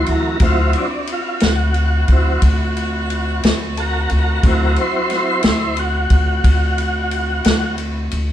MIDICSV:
0, 0, Header, 1, 5, 480
1, 0, Start_track
1, 0, Tempo, 669643
1, 305, Time_signature, 12, 3, 24, 8
1, 5967, End_track
2, 0, Start_track
2, 0, Title_t, "Tonewheel organ"
2, 0, Program_c, 0, 16
2, 0, Note_on_c, 0, 52, 57
2, 0, Note_on_c, 0, 54, 52
2, 73, Note_on_c, 0, 70, 83
2, 264, Note_off_c, 0, 54, 0
2, 269, Note_off_c, 0, 52, 0
2, 297, Note_on_c, 0, 54, 53
2, 302, Note_off_c, 0, 70, 0
2, 303, Note_on_c, 0, 64, 56
2, 305, Note_on_c, 0, 60, 50
2, 315, Note_on_c, 0, 65, 86
2, 543, Note_off_c, 0, 65, 0
2, 557, Note_on_c, 0, 62, 74
2, 621, Note_off_c, 0, 54, 0
2, 624, Note_off_c, 0, 64, 0
2, 625, Note_off_c, 0, 60, 0
2, 785, Note_off_c, 0, 62, 0
2, 806, Note_on_c, 0, 65, 74
2, 1029, Note_off_c, 0, 65, 0
2, 1033, Note_on_c, 0, 66, 93
2, 1518, Note_on_c, 0, 54, 52
2, 1522, Note_on_c, 0, 60, 48
2, 1524, Note_on_c, 0, 64, 58
2, 1729, Note_off_c, 0, 54, 0
2, 1731, Note_off_c, 0, 60, 0
2, 1732, Note_off_c, 0, 64, 0
2, 2442, Note_off_c, 0, 66, 0
2, 2707, Note_on_c, 0, 69, 64
2, 2724, Note_on_c, 0, 66, 81
2, 2730, Note_off_c, 0, 69, 0
2, 2736, Note_on_c, 0, 70, 89
2, 2940, Note_off_c, 0, 66, 0
2, 2955, Note_off_c, 0, 70, 0
2, 2982, Note_on_c, 0, 66, 72
2, 2991, Note_on_c, 0, 70, 83
2, 3189, Note_off_c, 0, 66, 0
2, 3192, Note_on_c, 0, 54, 53
2, 3196, Note_on_c, 0, 60, 50
2, 3201, Note_on_c, 0, 64, 59
2, 3203, Note_off_c, 0, 70, 0
2, 3209, Note_on_c, 0, 66, 69
2, 3214, Note_on_c, 0, 70, 78
2, 3423, Note_off_c, 0, 66, 0
2, 3434, Note_off_c, 0, 70, 0
2, 3438, Note_off_c, 0, 64, 0
2, 3444, Note_on_c, 0, 72, 77
2, 3447, Note_on_c, 0, 64, 73
2, 3661, Note_off_c, 0, 64, 0
2, 3669, Note_off_c, 0, 72, 0
2, 3685, Note_on_c, 0, 72, 86
2, 3690, Note_on_c, 0, 64, 78
2, 3881, Note_off_c, 0, 54, 0
2, 3883, Note_off_c, 0, 60, 0
2, 3901, Note_off_c, 0, 64, 0
2, 3909, Note_on_c, 0, 64, 75
2, 3910, Note_off_c, 0, 72, 0
2, 3925, Note_on_c, 0, 72, 87
2, 4132, Note_off_c, 0, 64, 0
2, 4149, Note_off_c, 0, 72, 0
2, 4151, Note_on_c, 0, 66, 102
2, 5559, Note_off_c, 0, 66, 0
2, 5967, End_track
3, 0, Start_track
3, 0, Title_t, "Saxophone section"
3, 0, Program_c, 1, 65
3, 0, Note_on_c, 1, 60, 78
3, 0, Note_on_c, 1, 64, 70
3, 0, Note_on_c, 1, 66, 84
3, 5940, Note_off_c, 1, 60, 0
3, 5940, Note_off_c, 1, 64, 0
3, 5940, Note_off_c, 1, 66, 0
3, 5967, End_track
4, 0, Start_track
4, 0, Title_t, "Upright bass"
4, 0, Program_c, 2, 32
4, 59, Note_on_c, 2, 38, 77
4, 283, Note_off_c, 2, 38, 0
4, 289, Note_on_c, 2, 38, 95
4, 518, Note_off_c, 2, 38, 0
4, 1025, Note_on_c, 2, 38, 96
4, 1477, Note_off_c, 2, 38, 0
4, 1497, Note_on_c, 2, 38, 83
4, 1722, Note_off_c, 2, 38, 0
4, 1737, Note_on_c, 2, 38, 87
4, 2434, Note_off_c, 2, 38, 0
4, 2465, Note_on_c, 2, 38, 89
4, 2918, Note_off_c, 2, 38, 0
4, 2948, Note_on_c, 2, 38, 83
4, 3169, Note_off_c, 2, 38, 0
4, 3179, Note_on_c, 2, 38, 98
4, 3404, Note_off_c, 2, 38, 0
4, 3902, Note_on_c, 2, 38, 97
4, 4356, Note_off_c, 2, 38, 0
4, 4376, Note_on_c, 2, 38, 84
4, 4602, Note_off_c, 2, 38, 0
4, 4618, Note_on_c, 2, 38, 92
4, 5313, Note_off_c, 2, 38, 0
4, 5343, Note_on_c, 2, 38, 85
4, 5795, Note_off_c, 2, 38, 0
4, 5826, Note_on_c, 2, 38, 85
4, 5967, Note_off_c, 2, 38, 0
4, 5967, End_track
5, 0, Start_track
5, 0, Title_t, "Drums"
5, 46, Note_on_c, 9, 51, 61
5, 117, Note_off_c, 9, 51, 0
5, 284, Note_on_c, 9, 51, 83
5, 289, Note_on_c, 9, 36, 111
5, 356, Note_off_c, 9, 51, 0
5, 361, Note_off_c, 9, 36, 0
5, 524, Note_on_c, 9, 51, 62
5, 596, Note_off_c, 9, 51, 0
5, 769, Note_on_c, 9, 51, 65
5, 841, Note_off_c, 9, 51, 0
5, 1005, Note_on_c, 9, 51, 77
5, 1015, Note_on_c, 9, 38, 99
5, 1077, Note_off_c, 9, 51, 0
5, 1087, Note_off_c, 9, 38, 0
5, 1248, Note_on_c, 9, 51, 59
5, 1320, Note_off_c, 9, 51, 0
5, 1490, Note_on_c, 9, 51, 65
5, 1495, Note_on_c, 9, 36, 77
5, 1562, Note_off_c, 9, 51, 0
5, 1566, Note_off_c, 9, 36, 0
5, 1733, Note_on_c, 9, 51, 82
5, 1736, Note_on_c, 9, 36, 80
5, 1804, Note_off_c, 9, 51, 0
5, 1808, Note_off_c, 9, 36, 0
5, 1983, Note_on_c, 9, 51, 56
5, 2054, Note_off_c, 9, 51, 0
5, 2222, Note_on_c, 9, 51, 60
5, 2294, Note_off_c, 9, 51, 0
5, 2461, Note_on_c, 9, 51, 83
5, 2472, Note_on_c, 9, 38, 111
5, 2533, Note_off_c, 9, 51, 0
5, 2543, Note_off_c, 9, 38, 0
5, 2704, Note_on_c, 9, 51, 57
5, 2775, Note_off_c, 9, 51, 0
5, 2935, Note_on_c, 9, 51, 54
5, 3007, Note_off_c, 9, 51, 0
5, 3177, Note_on_c, 9, 51, 79
5, 3178, Note_on_c, 9, 36, 110
5, 3249, Note_off_c, 9, 51, 0
5, 3250, Note_off_c, 9, 36, 0
5, 3414, Note_on_c, 9, 51, 58
5, 3485, Note_off_c, 9, 51, 0
5, 3654, Note_on_c, 9, 51, 60
5, 3664, Note_on_c, 9, 38, 33
5, 3725, Note_off_c, 9, 51, 0
5, 3735, Note_off_c, 9, 38, 0
5, 3889, Note_on_c, 9, 51, 81
5, 3899, Note_on_c, 9, 38, 110
5, 3961, Note_off_c, 9, 51, 0
5, 3971, Note_off_c, 9, 38, 0
5, 4133, Note_on_c, 9, 51, 59
5, 4205, Note_off_c, 9, 51, 0
5, 4372, Note_on_c, 9, 51, 71
5, 4376, Note_on_c, 9, 36, 83
5, 4444, Note_off_c, 9, 51, 0
5, 4448, Note_off_c, 9, 36, 0
5, 4617, Note_on_c, 9, 36, 87
5, 4617, Note_on_c, 9, 51, 89
5, 4689, Note_off_c, 9, 36, 0
5, 4689, Note_off_c, 9, 51, 0
5, 4859, Note_on_c, 9, 51, 64
5, 4931, Note_off_c, 9, 51, 0
5, 5098, Note_on_c, 9, 51, 64
5, 5169, Note_off_c, 9, 51, 0
5, 5336, Note_on_c, 9, 51, 87
5, 5346, Note_on_c, 9, 38, 113
5, 5408, Note_off_c, 9, 51, 0
5, 5418, Note_off_c, 9, 38, 0
5, 5575, Note_on_c, 9, 51, 61
5, 5646, Note_off_c, 9, 51, 0
5, 5816, Note_on_c, 9, 51, 63
5, 5888, Note_off_c, 9, 51, 0
5, 5967, End_track
0, 0, End_of_file